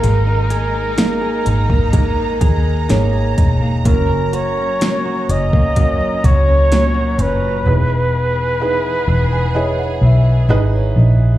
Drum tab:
HH |x-x-x-x-x-x-x-x-|x-x-x-x-x-x-x-x-|----------------|
SD |----o-------o---|----o-------o---|----------------|
BD |-------oo-o---o-|o------oo-o-----|----------------|